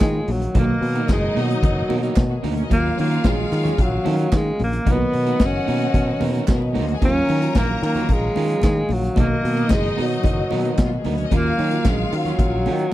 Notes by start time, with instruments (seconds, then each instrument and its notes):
Already playing: tine electric piano D#3 F#3 A#3 C#4 F4, french horn section D#3 F#3 C#4 F4, alto saxophone G#3, string section F4 F5
0.00 fingered electric bass D#3, kick, snare, clap, closed hi-hat, high conga
0.15 muted clean electric guitar stroke
0.28 fingered electric bass A#1, alto saxophone F#3, open hi-hat, high conga
0.42 muted clean electric guitar stroke, closed hi-hat
0.54 fingered electric bass B1, tine electric piano B2 D#3 F#3 A#3 F#4, french horn section B2 A#4 D#5, clean electric guitar A#3 D#4 F#4 A#4, string section D#4 D#5, kick, closed hi-hat, muted conga
0.58 alto saxophone A#3
0.67 muted clean electric guitar stroke
0.81 fingered electric bass B2, muted clean electric guitar stroke, open hi-hat, muted conga
0.95 clean electric guitar A#3 D#4 F#4 A#4, closed hi-hat
1.09 fingered electric bass F#1, alto saxophone G#3, muted clean electric guitar stroke, kick, snare, clap, closed hi-hat, high conga
1.23 muted clean electric guitar stroke
1.35 fingered electric bass B2, clean electric guitar A#3 D#4 F#4 A#4, open hi-hat
1.41 alto saxophone F#3
1.50 muted clean electric guitar stroke, closed hi-hat
1.63 fingered electric bass F#1, muted clean electric guitar stroke, kick, closed hi-hat, muted conga, low conga
1.76 muted clean electric guitar stroke
1.89 fingered electric bass B2, clean electric guitar A#3 D#4 F#4 A#4, open hi-hat, muted conga
2.03 clean electric guitar A#3 D#4 F#4 A#4, closed hi-hat
2.15 fingered electric bass B2, muted clean electric guitar stroke, kick, snare, clap, closed hi-hat, high conga
2.29 string section F#3 F#4, muted clean electric guitar stroke
2.36 string section G#3 G#4
2.42 fingered electric bass D2, string section A#3 A#4, clean electric guitar A#3 D#4 F#4 A#4, open hi-hat, high conga
2.50 string section B3 B4
2.55 string section C#4 C#5, muted clean electric guitar stroke, closed hi-hat
2.62 string section D#4 D#5
2.69 fingered electric bass D#2, tine electric piano D#3 F#3 A#3 C#4, clean electric guitar F#3 C#4 F4 A#4, alto saxophone A#3, french horn section C#4, string section F4 F5, kick, closed hi-hat, muted conga
2.73 french horn section D#3 F5, tine electric piano F4
2.96 fingered electric bass D#3, clean electric guitar F#3 C#4 F4 C#5, open hi-hat, muted conga
3.00 alto saxophone A#3
3.10 clean electric guitar F#3 C#4 F4 A#4, closed hi-hat
3.24 fingered electric bass A#1, clean electric guitar F#3 C#4 F4 A#4, alto saxophone G#3, kick, snare, clap, closed hi-hat, high conga
3.37 muted clean electric guitar stroke
3.50 fingered electric bass D#3, muted clean electric guitar stroke, clap, open hi-hat
3.63 clean electric guitar F#3 C#4 F4 C#5, closed hi-hat, low conga
3.78 fingered electric bass A#1, alto saxophone F#3, kick, closed hi-hat, muted conga
3.91 muted clean electric guitar stroke
4.04 fingered electric bass D#3, clean electric guitar F#3 C#4 F4 A#4, open hi-hat, muted conga
4.18 clean electric guitar F#3 C#4 F4 A#4, closed hi-hat
4.31 fingered electric bass D#3, muted clean electric guitar stroke, kick, snare, clap, closed hi-hat, high conga
4.36 alto saxophone G#3
4.46 muted clean electric guitar stroke
4.59 fingered electric bass A#1, open hi-hat, high conga
4.64 alto saxophone A#3
4.73 muted clean electric guitar stroke, closed hi-hat
4.85 fingered electric bass B1, tine electric piano D#3 F#3 B3 A#4, french horn section F#3 B3 A#4 D#5, clean electric guitar A#3 D#4 F#4 A#4, string section F#4 F#5, kick, closed hi-hat, muted conga
4.89 alto saxophone B3, tine electric piano F4
4.96 tine electric piano F#4
5.00 muted clean electric guitar stroke
5.12 fingered electric bass B2, muted clean electric guitar stroke, open hi-hat, muted conga
5.26 clean electric guitar A#3 D#4 F#4 A#4, closed hi-hat
5.40 fingered electric bass F#1, kick, snare, clap, closed hi-hat, high conga
5.45 alto saxophone C#4
5.54 muted clean electric guitar stroke
5.66 fingered electric bass B2, clean electric guitar A#3 D#4 F#4 A#4, open hi-hat
5.81 muted clean electric guitar stroke, closed hi-hat
5.93 fingered electric bass B2, muted clean electric guitar stroke, kick, closed hi-hat, muted conga, low conga
6.07 muted clean electric guitar stroke
6.20 fingered electric bass B2, clean electric guitar A#3 D#4 F#4 A#4, open hi-hat, muted conga, low conga
6.33 clean electric guitar A#3 D#4 F#4 A#4, closed hi-hat
6.47 fingered electric bass B2, muted clean electric guitar stroke, kick, snare, clap, closed hi-hat, high conga
6.54 string section A#3 A#4
6.60 string section B3 B4, muted clean electric guitar stroke, high conga
6.68 string section C#4 C#5
6.73 fingered electric bass D2, clean electric guitar A#3 D#4 F#4 A#4, string section D#4 D#5, open hi-hat, high conga
6.81 string section F4 F5
6.87 string section F#4 F#5, muted clean electric guitar stroke, closed hi-hat
6.95 string section G#4 G#5
7.01 fingered electric bass D#2, tine electric piano D#3 F#3 A#3 C#4 F4, french horn section D#3 C#4 F5, clean electric guitar F#3 C#4 F4 A#4, alto saxophone C#4, string section A#4 A#5, kick, closed hi-hat, muted conga
7.29 fingered electric bass D#3, clean electric guitar F#3 C#4 F4 C#5, open hi-hat, muted conga
7.42 clean electric guitar F#3 C#4 F4 A#4, closed hi-hat
7.55 fingered electric bass A#1, clean electric guitar F#3 C#4 F4 A#4, alto saxophone A#3, kick, snare, clap, closed hi-hat, high conga
7.70 muted clean electric guitar stroke
7.82 fingered electric bass D#3, alto saxophone A#3, muted clean electric guitar stroke, clap, open hi-hat
7.95 clean electric guitar F#3 C#4 F4 C#5, closed hi-hat, low conga
8.09 fingered electric bass A#1, alto saxophone G#3, kick, closed hi-hat, muted conga
8.23 muted clean electric guitar stroke
8.36 fingered electric bass D#3, clean electric guitar F#3 C#4 F4 A#4, open hi-hat, muted conga
8.49 clean electric guitar F#3 C#4 F4 A#4, closed hi-hat
8.62 fingered electric bass D#3, kick, snare, clap, closed hi-hat, high conga
8.76 muted clean electric guitar stroke
8.89 fingered electric bass A#1, alto saxophone F#3, open hi-hat, high conga
9.02 muted clean electric guitar stroke, closed hi-hat
9.16 fingered electric bass B1, french horn section B2 F#4 A#4 D#5, tine electric piano B2 D#3 F#3 A#3, clean electric guitar F#3 B3 D#4 A#4, string section D#4 D#5, kick, closed hi-hat, muted conga
9.20 alto saxophone A#3, tine electric piano F#4
9.30 muted clean electric guitar stroke
9.43 fingered electric bass B2, muted clean electric guitar stroke, open hi-hat
9.56 clean electric guitar F#3 B3 D#4 A#4, closed hi-hat
9.69 fingered electric bass F#1, alto saxophone G#3, muted clean electric guitar stroke, kick, snare, clap, closed hi-hat, high conga
9.82 muted clean electric guitar stroke
9.97 fingered electric bass B2, clean electric guitar F#3 B3 D#4 A#4, open hi-hat
10.02 alto saxophone F#3
10.10 muted clean electric guitar stroke, closed hi-hat
10.24 fingered electric bass F#1, muted clean electric guitar stroke, kick, closed hi-hat, muted conga, low conga
10.37 muted clean electric guitar stroke
10.50 fingered electric bass B2, tine electric piano D#3 F#3 A#3 B3 F#4, clean electric guitar F#3 B3 D#4 A#4, open hi-hat, muted conga
10.64 clean electric guitar F#3 B3 D#4 A#4, closed hi-hat
10.78 fingered electric bass B2, kick, snare, clap, closed hi-hat, high conga
10.85 string section F3 F4
10.91 string section F#3 F#4, muted clean electric guitar stroke
10.97 string section G#3 G#4
11.04 fingered electric bass D2, clean electric guitar F#3 B3 D#4 A#4, string section A#3 A#4, open hi-hat, high conga
11.12 string section B3 B4
11.17 string section C#4 C#5, muted clean electric guitar stroke, closed hi-hat
11.25 string section D#4 D#5
11.30 fingered electric bass D#2, tine electric piano D#3 F#3 A#3 C#4 F4, french horn section D#3 F#3 C#4 F5, clean electric guitar F#3 C#4 F4 A#4, string section F4 F5, kick, closed hi-hat, muted conga
11.36 alto saxophone A#3
11.58 fingered electric bass D#3, clean electric guitar F#3 C#4 F4 C#5, open hi-hat, muted conga
11.71 clean electric guitar F#3 C#4 F4 A#4, closed hi-hat
11.85 fingered electric bass A#1, clean electric guitar F#3 C#4 F4 A#4, kick, snare, clap, closed hi-hat, high conga
11.90 alto saxophone G#3
11.99 muted clean electric guitar stroke
12.12 fingered electric bass D#3, alto saxophone F#3, muted clean electric guitar stroke, clap, open hi-hat
12.25 clean electric guitar F#3 C#4 F4 C#5, closed hi-hat, low conga
12.39 fingered electric bass A#1, muted clean electric guitar stroke, kick, closed hi-hat, muted conga
12.52 muted clean electric guitar stroke
12.66 fingered electric bass D#3, clean electric guitar F#3 C#4 F4 A#4, open hi-hat, muted conga
12.79 clean electric guitar F#3 C#4 F4 A#4, closed hi-hat